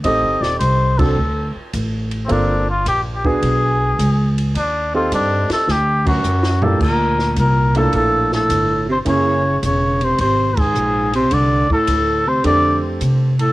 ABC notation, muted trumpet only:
X:1
M:4/4
L:1/16
Q:"Swing" 1/4=106
K:Gm
V:1 name="Muted trumpet"
e2 d2 c2 A4 z4 z3/2 C/2 | D2 F2 G3/2 G/2 _A8 z2 | D2 F2 D2 A2 G2 ^F4 A2 | B4 B2 A2 A2 A4 c2 |
^c4 c2 =c2 c2 ^G4 c2 | d2 A4 c2 d2 z4 A2 |]